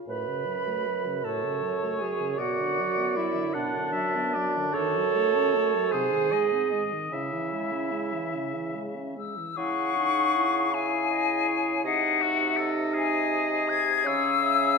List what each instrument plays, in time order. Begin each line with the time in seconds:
0.07 bassoon F#2, french horn A2, clarinet B4, flute B5
0.27 french horn C#3
0.46 french horn F#3
0.67 french horn A3
0.87 french horn F#3
1.06 french horn C#3
1.24 french horn A2, clarinet A4, oboe C#5, flute A5
1.44 french horn C#3
1.63 french horn F#3
1.84 french horn A3
1.98 french horn F#3, clarinet G#4, flute G#5
2.20 french horn C#3
2.38 french horn B2, clarinet F#4, oboe D5, flute F#5
2.59 french horn D3
2.79 french horn F#3
2.99 french horn B3
3.16 french horn F#3, clarinet E4, flute E5
3.37 french horn D3
3.53 french horn B2, clarinet D4, flute D5, oboe F#5
3.75 french horn D3
3.92 french horn F#3, oboe E5
4.16 french horn B3
4.34 french horn F#3, oboe D5
4.57 french horn D3
4.74 bassoon F#2, clarinet A4, oboe C#5, flute A5
4.78 french horn D#3
4.97 french horn F#3
5.16 french horn A3
5.35 french horn C#4
5.55 french horn A3
5.75 french horn F#3
5.91 bassoon G#2, french horn C3, clarinet G#4, oboe C5, flute G#5
6.12 french horn D#3
6.32 french horn G#3, oboe D#5
6.53 french horn C4
6.72 french horn G#3, oboe D#5
6.92 french horn D#3
7.12 bassoon C#3, french horn C#3, clarinet E4, flute E5, oboe E5
7.33 french horn E3
7.52 french horn G#3
7.72 french horn C#4
7.92 french horn G#3
8.13 french horn E3
8.34 french horn C#3
8.54 french horn E3
8.75 french horn G#3
8.96 french horn C#4
9.17 french horn G#3, flute E6
9.37 french horn E3
9.57 bassoon C#3, french horn E4, oboe G#4, clarinet F#5, flute C#6
9.96 french horn D#4
10.36 french horn E4
10.74 french horn E4, oboe G#4, clarinet E5, flute G#5
11.11 clarinet D#5
11.48 clarinet C#5
11.84 bassoon C3, french horn D#4, oboe G#4, clarinet D#5, flute F#5
12.22 oboe F#4, clarinet E5
12.57 oboe A4, clarinet D#5
12.94 oboe G#4, flute G#5
13.68 flute G#6
14.04 bassoon C#3, french horn C#4, clarinet C#5, flute E6
14.43 clarinet E5